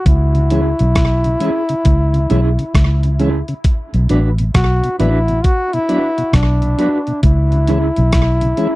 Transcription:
0.06 0.72 C#2 loud
0.06 3.17 E4 loud
0.06 kick loud
0.06 closed hi-hat medium
0.35 0.40 C#3 medium
0.35 closed hi-hat soft
0.50 0.60 E3 medium
0.50 0.61 G#3 medium
0.50 0.69 C#4 medium
0.50 0.61 C#4 medium
0.50 0.70 E4 medium
0.50 0.70 G#4 medium
0.50 closed hi-hat medium
0.79 1.35 B1 medium
0.79 0.85 C#3 medium
0.79 closed hi-hat medium
0.95 kick loud
0.95 cross-stick loud
0.95 closed hi-hat medium
1.24 1.30 C#3 medium
1.24 closed hi-hat medium
1.40 1.50 E3 medium
1.40 1.50 G#3 medium
1.40 1.59 C#4 medium
1.40 1.51 C#4 medium
1.40 1.59 E4 medium
1.40 1.59 G#4 loud
1.40 closed hi-hat medium
1.69 1.75 C#3 medium
1.69 closed hi-hat medium
1.85 2.26 C#2 medium
1.85 kick loud
1.85 closed hi-hat medium
2.14 2.19 C#3 medium
2.14 closed hi-hat soft
2.30 2.56 B1 medium
2.30 2.40 E3 medium
2.30 2.40 G#3 medium
2.30 2.48 C#4 medium
2.30 2.40 C#4 medium
2.30 2.49 E4 loud
2.30 2.49 G#4 loud
2.30 closed hi-hat medium
2.59 2.64 C#3 medium
2.59 muted clean electric guitar stroke soft
2.59 closed hi-hat soft
2.75 3.41 C#2 medium
2.75 kick loud
2.75 cross-stick loud
2.75 closed hi-hat medium
3.03 3.09 C#3 medium
3.03 closed hi-hat medium
3.20 3.29 E3 medium
3.20 3.30 G#3 medium
3.20 3.38 C#4 medium
3.20 3.30 C#4 medium
3.20 3.39 E4 medium
3.20 3.39 G#4 medium
3.20 closed hi-hat medium
3.48 3.54 C#3 medium
3.48 closed hi-hat soft
3.64 kick loud
3.64 closed hi-hat medium
3.94 4.08 B1 loud
3.94 3.99 B2 medium
3.94 closed hi-hat soft
4.09 4.50 A1 medium
4.09 4.19 F#3 medium
4.09 4.20 B3 medium
4.09 4.28 D4 medium
4.09 4.20 D4 medium
4.09 4.28 F#4 medium
4.09 4.29 B4 loud
4.09 closed hi-hat medium
4.38 4.44 B2 medium
4.38 closed hi-hat medium
4.54 4.81 B1 medium
4.54 4.96 F#4 loud
4.54 kick loud
4.54 cross-stick loud
4.54 closed hi-hat medium
4.84 4.89 B2 medium
4.84 closed hi-hat medium
4.99 5.40 A1 medium
4.99 5.09 F#3 medium
4.99 5.09 B3 medium
4.99 5.18 D4 medium
4.99 5.10 D4 medium
4.99 5.46 E4 loud
4.99 5.18 F#4 loud
4.99 5.18 B4 loud
4.99 closed hi-hat medium
5.28 5.34 B2 medium
5.28 closed hi-hat soft
5.44 5.75 F#4 loud
5.44 kick loud
5.44 closed hi-hat medium
5.73 5.79 B2 medium
5.73 6.36 E4 loud
5.73 closed hi-hat soft
5.89 5.99 F#3 medium
5.89 5.99 B3 medium
5.89 6.07 D4 medium
5.89 5.99 D4 medium
5.89 6.08 F#4 medium
5.89 6.08 B4 loud
5.89 closed hi-hat medium
6.18 6.23 B2 medium
6.18 muted clean electric guitar stroke soft
6.18 closed hi-hat soft
6.33 6.74 B1 medium
6.33 7.23 D4 medium
6.33 kick loud
6.33 cross-stick loud
6.33 closed hi-hat medium
6.62 6.68 B2 medium
6.62 closed hi-hat medium
6.78 6.88 F#3 medium
6.78 6.89 B3 medium
6.78 6.97 D4 medium
6.78 6.89 D4 medium
6.78 6.97 F#4 medium
6.78 6.97 B4 medium
6.78 closed hi-hat medium
7.07 7.13 B2 medium
7.07 closed hi-hat soft
7.23 7.90 C#2 loud
7.23 8.76 E4 medium
7.23 kick loud
7.23 closed hi-hat medium
7.52 7.58 C#3 medium
7.52 closed hi-hat soft
7.67 7.78 E3 medium
7.67 7.78 G#3 medium
7.67 7.87 C#4 medium
7.67 7.78 C#4 medium
7.67 7.87 E4 loud
7.67 7.87 G#4 medium
7.67 closed hi-hat medium
7.96 8.52 B1 medium
7.96 8.03 C#3 medium
7.96 closed hi-hat soft
8.12 kick loud
8.12 cross-stick loud
8.12 closed hi-hat medium
8.41 8.47 C#3 medium
8.41 closed hi-hat medium
8.57 8.67 E3 medium
8.57 8.68 G#3 medium
8.57 8.76 C#4 medium
8.57 8.68 C#4 medium
8.57 8.76 E4 medium
8.57 8.76 G#4 medium
8.57 closed hi-hat medium

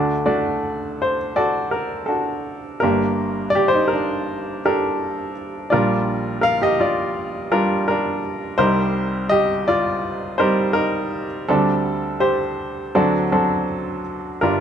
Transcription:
0.00 2.78 D2 medium
0.00 2.78 D3 soft
0.00 0.12 A3 medium
0.00 0.12 D4 medium
0.00 0.13 F#4 medium
0.00 0.12 D5 medium
0.26 1.17 A3 medium
0.26 1.17 D4 medium
0.26 1.17 F#4 medium
0.26 1.17 D5 medium
1.02 1.34 C5 medium
1.36 2.07 F#4 medium
1.36 2.04 A4 medium
1.36 1.70 D5 medium
1.71 2.10 A#4 medium
2.06 2.78 D4 soft
2.06 2.78 F#4 soft
2.06 2.59 A4 medium
2.80 5.68 G1 medium
2.80 5.68 G2 medium
2.80 3.73 A#3 medium
2.80 3.51 D4 medium
2.80 3.54 G4 medium
2.80 3.50 A#4 medium
3.50 3.71 D5 medium
3.55 3.72 G4 medium
3.68 3.89 C5 medium
3.74 3.91 D#4 medium
3.88 4.58 A#4 medium
3.93 4.60 D4 medium
4.65 5.32 D4 medium
4.65 5.32 G4 medium
4.65 5.32 A4 medium
4.65 5.32 A#4 medium
5.70 8.55 A#1 soft
5.70 8.56 A#2 medium
5.70 6.61 G3 medium
5.70 6.61 D4 medium
5.70 6.39 F4 medium
5.70 6.40 A#4 medium
5.70 6.44 D5 medium
6.41 6.59 A#4 medium
6.41 6.61 F5 loud
6.62 6.78 G4 medium
6.62 6.80 D#5 medium
6.80 7.47 F4 medium
6.80 7.47 D5 medium
7.51 8.19 G3 medium
7.51 7.89 D4 medium
7.51 8.19 F4 medium
7.51 7.86 A#4 medium
7.88 8.56 D4 medium
7.88 8.57 A#4 medium
8.58 11.44 C2 medium
8.58 11.44 C3 medium
8.58 9.49 G3 medium
8.58 9.49 C4 medium
8.58 9.49 D#4 medium
8.58 9.49 A#4 medium
8.58 9.26 C5 medium
9.29 9.64 G4 medium
9.29 9.67 D#5 loud
9.68 10.36 F4 medium
9.68 10.41 D5 medium
10.38 11.07 G3 medium
10.38 11.07 C4 medium
10.38 10.74 D#4 medium
10.38 10.72 A#4 medium
10.38 10.72 C5 medium
10.73 11.26 D#4 medium
10.73 11.25 A#4 medium
11.48 12.91 D2 medium
11.48 12.91 D3 medium
11.48 12.39 G3 medium
11.48 12.17 C4 medium
11.48 12.40 D4 medium
11.48 12.23 A4 medium
12.20 12.90 G4 medium
12.20 12.96 C5 medium
12.95 14.38 D2 medium
12.95 14.38 D3 medium
12.95 13.24 F#3 medium
12.95 13.24 C4 medium
12.95 13.24 D4 medium
12.95 13.65 F#4 medium
12.95 13.24 A4 medium
12.95 13.64 D5 medium
13.32 14.01 F#3 medium
13.32 14.00 C4 medium
13.32 14.00 D4 medium
13.32 14.01 A4 medium
14.41 14.60 G1 medium
14.41 14.60 G2 medium
14.41 14.60 G3 medium
14.41 14.60 D4 medium
14.41 14.60 F4 medium
14.41 14.60 A#4 medium

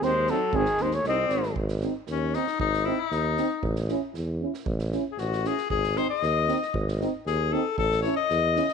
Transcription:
0.00 0.30 D#2 medium
0.00 0.31 G#3 medium
0.00 0.11 C4 medium
0.00 0.13 D#4 medium
0.00 0.32 C5 medium
0.00 snare soft
0.27 0.57 F#3 medium
0.27 0.38 C4 medium
0.27 0.39 D#4 medium
0.27 0.57 A4 medium
0.27 snare soft
0.53 0.67 G#1 loud
0.53 0.84 D#3 medium
0.53 0.63 C4 medium
0.53 0.65 D#4 medium
0.53 0.83 G#4 loud
0.53 kick medium
0.65 snare soft
0.77 1.02 D#2 medium
0.77 0.90 C4 medium
0.77 snare soft
0.82 0.98 G#3 medium
0.82 0.92 D#4 medium
0.82 0.95 C5 medium
0.91 1.05 C#5 medium
0.91 snare soft
0.97 1.07 A3 medium
1.04 1.27 C2 medium
1.04 1.15 C4 medium
1.04 snare soft
1.08 1.55 C4 medium
1.08 1.17 D#4 medium
1.08 1.54 D#5 medium
1.29 1.53 G#1 medium
1.29 1.41 C4 medium
1.29 1.42 D#4 medium
1.29 snare soft
1.43 snare soft
1.56 1.85 G#1 loud
1.56 kick medium
1.68 snare soft
1.81 1.93 C4 soft
1.81 1.93 D#4 medium
1.81 snare soft
2.07 2.37 D#2 medium
2.07 2.36 C#4 medium
2.07 snare soft
2.33 2.44 C4 medium
2.33 2.45 D#4 medium
2.33 2.60 D#4 medium
2.33 snare soft
2.47 snare soft
2.60 2.88 G#1 medium
2.60 2.86 D#4 medium
2.60 kick medium
2.74 snare soft
2.85 2.96 C4 medium
2.85 2.96 D#4 medium
2.85 3.01 E4 medium
3.00 3.77 D#4 medium
3.11 3.40 D#2 medium
3.11 snare soft
3.37 3.48 C4 medium
3.37 3.48 D#4 medium
3.37 snare soft
3.63 3.91 A1 loud
3.63 kick medium
3.76 snare soft
3.88 4.00 C#4 medium
3.88 4.00 E4 medium
3.88 snare soft
4.14 4.44 E2 medium
4.14 snare soft
4.40 4.51 C#4 medium
4.40 4.52 E4 medium
4.54 snare soft
4.66 4.95 A1 loud
4.66 kick medium
4.79 snare soft
4.92 5.03 C#4 medium
4.92 5.04 E4 medium
4.92 snare soft
5.12 5.20 G#4 medium
5.18 5.47 A1 medium
5.18 5.48 F#4 medium
5.18 snare soft
5.32 snare soft
5.44 5.55 C#4 soft
5.44 5.56 E4 soft
5.44 5.70 G#4 medium
5.44 snare soft
5.57 snare soft
5.70 5.99 G#1 medium
5.70 5.99 G#4 medium
5.70 kick medium
5.84 snare soft
5.96 6.07 C4 medium
5.96 6.07 D#4 medium
5.96 6.09 C5 medium
5.96 snare soft
6.10 6.84 D#5 loud
6.22 6.51 D#2 loud
6.22 snare soft
6.47 6.58 C4 medium
6.47 6.59 D#4 medium
6.47 snare soft
6.62 snare soft
6.74 7.03 G#1 loud
6.74 kick medium
6.88 snare soft
7.01 7.11 C4 medium
7.01 7.11 D#4 medium
7.01 snare soft
7.26 7.55 D#2 medium
7.26 7.54 G#4 medium
7.26 snare soft
7.52 7.63 C4 medium
7.52 7.63 D#4 medium
7.52 7.78 A4 medium
7.78 8.07 A1 loud
7.78 8.01 A4 loud
7.78 kick medium
7.91 snare soft
8.02 8.15 C#4 medium
8.02 8.14 E4 medium
8.02 8.15 C#5 medium
8.02 snare soft
8.16 8.73 D#5 loud
8.30 8.59 E2 loud
8.30 snare soft
8.56 8.66 C#4 medium
8.56 8.67 E4 medium
8.56 snare soft
8.68 snare soft

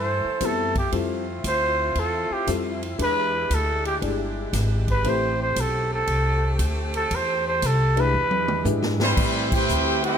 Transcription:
0.00 0.22 G2 medium
0.00 0.75 E3 medium
0.00 2.95 A3 medium
0.00 0.75 A4 medium
0.00 0.47 C5 medium
0.25 muted upright bass stroke soft
0.40 0.91 F#2 medium
0.40 0.72 G3 medium
0.40 0.72 B3 soft
0.40 0.72 C4 soft
0.40 0.72 E4 medium
0.40 0.72 B4 medium
0.40 kick soft
0.40 hi-hat pedal medium
0.40 ride medium
0.45 0.77 A4 medium
0.75 0.92 G4 medium
0.75 kick medium
0.75 ride medium
0.92 1.42 F2 medium
0.92 1.24 G3 medium
0.92 2.96 C4 medium
0.92 1.24 C4 medium
0.92 5.01 E4 medium
0.92 1.24 E4 medium
0.92 2.96 F4 medium
0.92 1.24 F4 medium
0.92 1.24 A4 medium
0.92 kick soft
0.92 ride medium
1.44 1.94 D2 medium
1.44 2.01 C5 medium
1.44 kick soft
1.44 hi-hat pedal medium
1.44 ride medium
1.95 2.28 E2 medium
1.95 kick soft
1.95 ride medium
1.99 2.34 A4 medium
2.30 2.48 G4 medium
2.30 muted upright bass stroke soft
2.47 2.97 F2 medium
2.47 2.78 G3 medium
2.47 2.79 C4 medium
2.47 2.79 E4 medium
2.47 2.79 F4 medium
2.47 2.79 A4 medium
2.47 kick soft
2.47 hi-hat pedal medium
2.47 ride medium
2.83 ride soft
2.99 3.49 E2 medium
2.99 3.30 G#3 medium
2.99 5.03 G#3 medium
2.99 3.30 D4 soft
2.99 5.03 D4 medium
2.99 3.30 E4 medium
2.99 3.30 G4 soft
2.99 9.13 G4 medium
2.99 3.30 B4 medium
2.99 kick soft
2.99 ride medium
3.03 3.56 B4 loud
3.50 4.00 D2 medium
3.50 3.86 A4 medium
3.50 kick soft
3.50 hi-hat pedal medium
3.50 ride medium
3.85 3.96 G4 medium
3.85 ride medium
4.01 4.52 G1 medium
4.01 4.33 G#3 medium
4.01 4.33 D4 soft
4.01 4.33 E4 soft
4.01 4.33 G4 medium
4.01 4.33 D5 medium
4.01 kick soft
4.01 ride medium
4.53 5.03 G#1 medium
4.53 kick soft
4.53 snare soft
4.53 hi-hat pedal medium
4.53 ride medium
4.88 5.10 B4 medium
4.88 kick medium
4.88 ride medium
5.04 5.55 A1 medium
5.04 7.97 A3 medium
5.04 6.49 A3 medium
5.04 7.97 C4 medium
5.04 6.50 C4 medium
5.04 6.50 E4 medium
5.04 6.50 G4 medium
5.04 6.50 B4 medium
5.04 kick soft
5.04 ride medium
5.08 5.41 C5 medium
5.42 5.62 C5 medium
5.56 6.06 B1 medium
5.56 5.93 A4 medium
5.56 kick soft
5.56 hi-hat pedal medium
5.56 ride medium
5.94 6.57 A4 medium
6.07 6.58 C2 medium
6.07 kick soft
6.07 ride medium
6.59 7.09 D2 medium
6.59 kick soft
6.59 hi-hat pedal medium
6.59 ride medium
6.94 7.17 A4 medium
6.94 ride medium
7.11 7.61 E2 medium
7.11 kick soft
7.11 ride medium
7.15 7.47 C5 medium
7.47 7.67 C5 medium
7.62 8.12 C2 medium
7.62 8.01 A4 medium
7.62 kick soft
7.62 hi-hat pedal medium
7.62 ride medium
7.96 8.12 G#3 medium
7.96 8.12 D4 medium
7.96 8.12 E4 medium
7.96 8.12 G4 medium
7.96 8.12 B4 medium
7.96 8.67 B4 loud
7.96 ride medium
8.14 8.64 E2 medium
8.14 9.16 E3 medium
8.14 9.16 G#3 medium
8.14 9.16 D4 medium
8.31 high tom medium
8.48 mid tom medium
8.65 9.15 G#2 loud
8.65 8.97 G#3 medium
8.65 8.97 D4 medium
8.65 8.97 E4 medium
8.65 8.97 G4 medium
8.65 8.97 B4 medium
8.65 floor tom medium
8.65 hi-hat pedal medium
8.82 snare medium
9.00 9.48 E3 medium
9.00 9.48 G3 medium
9.00 9.49 G3 loud
9.00 9.48 C4 medium
9.00 9.49 E4 medium
9.00 9.49 B4 medium
9.00 9.49 C5 loud
9.00 snare loud
9.17 9.67 A2 medium
9.17 10.18 G3 medium
9.17 10.18 A3 medium
9.17 10.18 C4 medium
9.17 10.18 G4 medium
9.17 kick medium
9.17 crash loud
9.52 10.02 C4 loud
9.52 10.02 E4 loud
9.52 10.04 E4 loud
9.52 10.02 G4 loud
9.52 10.04 B4 loud
9.52 10.04 C5 loud
9.52 10.04 G5 loud
9.52 kick loud
9.52 crash medium
9.69 10.18 D2 medium
9.69 hi-hat pedal medium
10.03 10.18 C4 loud
10.03 10.18 E4 medium
10.03 10.18 E4 loud
10.03 10.18 G4 loud
10.03 10.18 B4 loud
10.03 10.18 C5 loud
10.03 10.18 G5 loud
10.03 ride medium

